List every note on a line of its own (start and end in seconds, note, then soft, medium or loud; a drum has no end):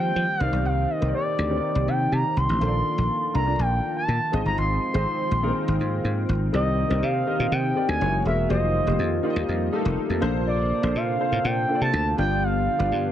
0.00 0.39 D#3 medium
0.00 0.11 F3 medium
0.00 0.39 G3 medium
0.00 4.29 A#3 medium
0.00 0.40 C4 medium
0.00 0.39 F4 medium
0.00 0.42 F4 medium
0.00 0.40 G4 medium
0.00 0.40 A#4 medium
0.00 0.42 B4 medium
0.00 0.30 C5 medium
0.00 0.42 D#5 medium
0.00 0.43 G5 loud
0.16 0.26 F3 medium
0.40 0.50 C2 medium
0.40 4.29 D#3 medium
0.40 0.89 C4 medium
0.40 2.59 C4 medium
0.40 2.59 D#4 medium
0.40 0.89 D#4 medium
0.40 0.89 G4 medium
0.40 0.89 A#4 medium
0.40 0.90 D5 medium
0.40 0.66 F5 loud
0.52 0.65 B1 medium
0.65 0.85 C2 medium
0.65 0.92 F5 loud
0.90 1.14 D#5 medium
1.01 1.12 C2 medium
1.01 1.37 C4 medium
1.01 1.37 D#4 medium
1.01 1.38 G4 medium
1.01 1.38 A#4 medium
1.01 1.08 C#5 medium
1.08 1.41 D5 medium
1.15 1.90 D5 medium
1.39 1.58 D2 medium
1.49 2.22 C4 medium
1.49 2.22 D#4 medium
1.49 2.22 G4 medium
1.49 2.22 A#4 medium
1.49 1.57 C#5 medium
1.57 2.26 D5 medium
1.75 1.85 C2 medium
1.88 2.07 C3 medium
1.88 2.14 G5 loud
2.12 2.22 C3 medium
2.12 2.39 A#5 loud
2.37 2.46 C2 medium
2.37 3.35 C6 loud
2.49 2.59 A1 medium
2.60 2.81 A#1 loud
2.60 3.15 A#3 medium
2.60 3.15 D4 medium
2.60 4.31 F4 medium
2.60 3.15 F4 medium
2.60 4.31 A4 medium
2.60 3.15 A4 medium
2.60 2.67 C5 medium
2.67 3.18 D5 medium
2.98 3.08 A#1 medium
3.34 3.54 C2 medium
3.34 3.43 A#3 medium
3.34 3.43 D4 medium
3.34 3.43 F4 medium
3.34 3.44 A4 medium
3.34 3.44 D5 medium
3.34 3.61 A#5 loud
3.46 4.18 A#3 medium
3.46 4.19 D4 medium
3.46 4.19 F4 medium
3.46 4.19 A4 medium
3.46 4.19 D5 medium
3.59 3.79 A#1 medium
3.59 3.96 G5 loud
3.97 4.42 A5 loud
4.08 4.18 A#2 loud
4.32 4.43 G#1 medium
4.32 6.51 D#3 medium
4.32 6.51 G#3 medium
4.32 4.82 C4 medium
4.32 6.51 C4 medium
4.32 4.82 D#4 medium
4.32 6.51 F4 medium
4.32 4.82 F4 medium
4.32 4.82 G#4 medium
4.32 4.82 D#5 medium
4.46 4.55 G1 medium
4.46 4.57 A#5 medium
4.58 4.77 G#1 loud
4.58 6.01 C6 medium
4.94 5.04 G#1 loud
4.94 5.30 C4 medium
4.94 5.30 D#4 medium
4.94 5.30 F4 medium
4.94 5.30 G#4 medium
4.94 5.30 C5 medium
5.31 5.51 A#1 medium
5.43 5.49 A#3 medium
5.43 6.15 D#4 medium
5.43 6.15 F4 medium
5.43 6.15 G#4 medium
5.43 6.16 A#4 loud
5.48 6.18 C4 medium
5.68 5.78 G#1 medium
5.80 6.00 G#2 medium
6.04 6.24 G#2 medium
6.29 6.49 G#1 medium
6.53 6.83 C2 loud
6.53 7.99 D#3 medium
6.53 7.99 A#3 medium
6.53 6.80 C4 medium
6.53 7.99 C4 medium
6.53 6.80 D#4 medium
6.53 7.99 D#4 medium
6.53 6.81 G4 medium
6.53 6.81 A#4 medium
6.53 6.81 D5 medium
6.53 7.05 D#5 medium
6.89 7.00 C2 medium
6.89 7.17 C4 medium
6.89 7.17 D#4 medium
6.89 7.17 G4 medium
6.89 7.17 A#4 medium
6.89 7.17 D5 medium
7.03 7.22 C3 loud
7.03 7.54 F5 loud
7.26 7.63 C4 medium
7.26 7.63 D#4 medium
7.26 7.63 G4 medium
7.26 7.63 A#4 medium
7.26 7.63 D#5 medium
7.39 7.49 A#2 medium
7.52 7.72 C3 loud
7.52 7.88 G5 loud
7.75 8.00 C4 medium
7.75 8.00 D#4 medium
7.75 8.01 G4 medium
7.75 8.01 A#4 medium
7.75 8.01 D5 medium
7.89 7.98 D2 medium
7.89 8.23 G#5 loud
8.00 8.21 F#1 loud
8.00 8.50 E3 medium
8.00 8.49 G#3 medium
8.00 8.20 A#3 medium
8.00 12.14 A#3 medium
8.00 8.20 E4 medium
8.00 8.21 F#4 medium
8.00 8.50 F#4 medium
8.00 8.21 G#4 medium
8.00 8.21 C#5 medium
8.25 8.45 E1 medium
8.25 8.43 A#3 medium
8.25 8.43 E4 medium
8.25 8.44 F#4 medium
8.25 8.44 G#4 medium
8.25 8.44 A#4 medium
8.25 8.49 E5 medium
8.49 8.79 F1 loud
8.49 10.20 D#3 medium
8.49 10.20 G3 medium
8.49 8.76 A#3 medium
8.49 8.76 D#4 medium
8.49 8.77 F4 medium
8.49 10.20 F4 medium
8.49 8.77 G4 medium
8.49 8.77 C5 medium
8.49 9.45 D#5 medium
8.86 8.97 F1 medium
8.86 9.13 A#3 medium
8.86 9.13 D#4 medium
8.86 9.14 F4 medium
8.86 9.14 G4 medium
8.86 9.14 C5 medium
8.99 9.19 F2 loud
9.23 9.59 A#3 medium
9.23 9.59 D#4 medium
9.23 9.60 F4 medium
9.23 9.60 G4 medium
9.23 9.30 D5 medium
9.30 9.63 D#5 loud
9.36 9.46 D#2 medium
9.49 9.68 F2 loud
9.72 9.78 A3 medium
9.72 10.09 D#4 medium
9.72 10.09 F4 medium
9.72 10.09 G4 medium
9.72 10.09 A4 loud
9.78 10.11 A#3 loud
9.85 9.95 F1 medium
9.97 muted slap bass stroke soft
10.10 10.19 F2 loud
10.20 10.71 A#1 loud
10.20 12.16 C3 medium
10.20 10.70 A#3 medium
10.20 10.70 D4 medium
10.20 12.16 D4 medium
10.20 10.70 F4 medium
10.20 12.16 A4 medium
10.20 10.71 A4 medium
10.20 10.71 C5 loud
10.47 10.98 D5 medium
10.82 10.93 A#1 medium
10.82 11.09 A#3 medium
10.82 11.10 D4 medium
10.82 11.10 F4 medium
10.82 11.10 A4 medium
10.82 11.10 C5 medium
10.95 11.15 A#2 loud
10.95 11.47 F5 loud
11.19 11.55 A#3 medium
11.19 11.56 D4 medium
11.19 11.56 F4 medium
11.19 11.56 A4 medium
11.19 11.56 C5 medium
11.32 11.42 A2 medium
11.44 11.64 A#2 loud
11.44 11.81 G5 loud
11.68 12.04 A#3 medium
11.68 12.04 D4 medium
11.68 12.05 F4 medium
11.68 12.05 A4 medium
11.68 11.75 C5 medium
11.75 12.08 D5 medium
11.81 11.91 C3 medium
11.81 12.16 A5 loud
11.93 12.13 D2 loud
12.17 12.67 G1 medium
12.17 13.12 D3 medium
12.17 13.12 G3 medium
12.17 12.66 B3 medium
12.17 13.12 B3 medium
12.17 12.66 D4 medium
12.17 12.67 F4 medium
12.17 13.12 F4 medium
12.17 12.67 G4 medium
12.17 12.67 D5 medium
12.17 12.45 G5 loud
12.43 13.12 F5 loud
12.78 12.89 G1 medium
12.78 13.06 B3 medium
12.78 13.06 D4 medium
12.78 13.06 F4 medium
12.78 13.06 G4 medium
12.78 13.06 D5 medium
12.92 13.11 G2 loud